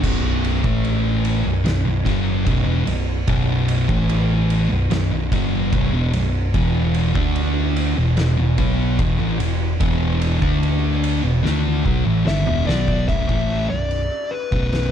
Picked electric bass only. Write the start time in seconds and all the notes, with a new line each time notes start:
0.04 B0
0.64 A1
1.45 B0
1.66 B0
1.85 B0
2.06 F#1
2.47 B0
2.65 E1
2.85 B0
3.28 B0
3.89 A1
4.70 B0
4.90 B0
5.11 B0
5.32 F#1
5.73 B0
5.93 E1
6.14 B0
6.54 E1
7.16 D2
7.97 E1
8.18 E1
8.38 E1
8.58 B1
8.99 E1
9.20 A1
9.40 E1
9.81 E1
10.42 D2
11.24 E1
11.45 D2
11.86 B1
12.05 A1
12.26 G1
12.46 E1
12.67 B1
13.09 B0
13.29 A1
13.70 B0
14.52 B0